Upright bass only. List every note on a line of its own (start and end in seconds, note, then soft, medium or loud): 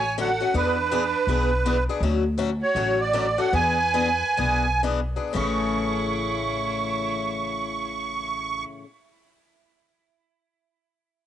0.00 0.40 A1 medium
0.54 1.13 E2 medium
1.27 1.86 B1 medium
2.01 2.60 D2 medium
2.75 3.37 A1 medium
3.53 4.21 E2 medium
4.39 5.16 B1 medium
5.35 8.62 A1 medium